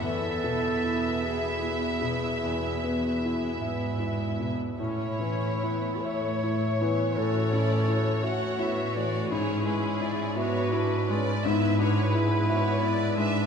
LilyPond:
<<
  \new Staff \with { instrumentName = "Violin section" } { \time 12/8 \key e \mixolydian \tempo 4. = 55 e''1~ e''4~ e''16 r8. | r2. cis''8 d''8 cis''8 fis''8 e''8 d''8 | cis''8 b'8 d''8 cis''8 b'8 d''8 e''8 cis''8 b'8 cis''8 d''8 e''8 | }
  \new Staff \with { instrumentName = "Violin section" } { \time 12/8 \key e \mixolydian e''1~ e''4.~ e''16 r16 | cis''4. cis''1~ cis''8 | gis'4. b'4. b'2. | }
  \new Staff \with { instrumentName = "Clarinet" } { \time 12/8 \key e \mixolydian a'4. gis'2. r4. | e'4. cis''4. a'4. fis'4. | e'4. fis'4 r8 e'2. | }
  \new Staff \with { instrumentName = "Grand piano" } { \time 12/8 \key e \mixolydian e,8 b,8 e'8 e''8 e'8 b,8 e,8 b8 e'8 e''8 e'8 b,8 | a,8 e8 e'8 e''8 e'8 e8 a,8 cis'8 e'8 e''8 e'8 e8 | gis,8 gis8 e'8 e''8 e'8 gis8 gis,8 d'8 e'8 e''8 e'8 gis8 | }
  \new Staff \with { instrumentName = "Viola section" } { \time 12/8 \key e \mixolydian << { e'1~ e'4.~ e'16 r16 | e'2. fis'8 e'8 fis'2 | e'4. d'4. e'8 fis'8 gis'8 fis'8 e'8 d'8 | } \\ { b1~ b4.~ b16 r16 | cis'8 cis'8 b8 a8 a8 b8 cis'4. cis'8 b8 a8 | cis'4. b8 d'8 cis'8 b2. | } >> }
  \new Staff \with { instrumentName = "Cello section" } { \clef bass \time 12/8 \key e \mixolydian e,1~ e,8 gis,4~ gis,16 r16 | r1. | gis,1. | }
>>